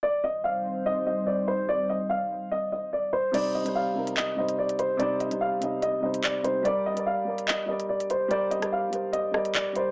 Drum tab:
CC |----------------|----------------|x---------------|----------------|
HH |----------------|----------------|x--x---x---x-xx-|x-xx--x-x--x--x-|
CP |----------------|----------------|--------x-------|------------x---|
SD |----------------|----------------|----------------|----------------|

CC |----------------|----------------|
HH |x--x---x---x-xx-|x-xx--x-x--x--x-|
CP |--------x-------|------------x---|
SD |----------------|---r------r-----|